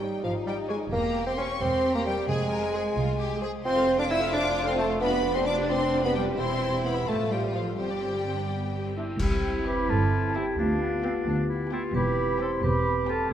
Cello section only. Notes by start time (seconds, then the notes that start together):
Already playing: G3
0.24 F3
0.46 G3
0.69 G#3
0.91 A#3
1.26 C4
1.37 C#4
1.61 C4
1.95 A#3
2.05 G3
2.28 G#3
3.65 C4
3.99 D4
4.10 E4
4.32 D4
4.67 C4
4.78 A3
5.01 B3
5.35 C4
5.47 D4
5.70 C4
6.04 B3
6.16 G3
6.39 C4
6.85 B3
7.09 A3
7.32 G3
7.56 F3
7.79 G3
9.21 C2
9.90 G2
10.58 D2
11.26 D2
11.95 E2
12.63 E2